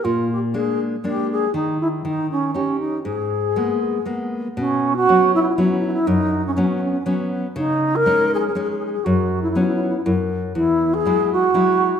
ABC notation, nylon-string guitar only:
X:1
M:3/4
L:1/8
Q:"Swing" 1/4=120
K:G#m
V:1 name="Nylon-string guitar"
A,,2 [G,A,=D]2 [G,A,D]2 | D,2 D,2 [CD=G]2 | G,,2 [G,A,B,]2 [G,A,B,]2 | [K:B] B,,2 [F,B,C]2 [F,B,C]2 |
F,,2 [F,B,C]2 [F,B,C]2 | C,2 [G,CD]2 [G,CD]2 | F,,2 [F,B,C]2 F,,2 | E,,2 [F,G,E]2 [F,G,E]2 |]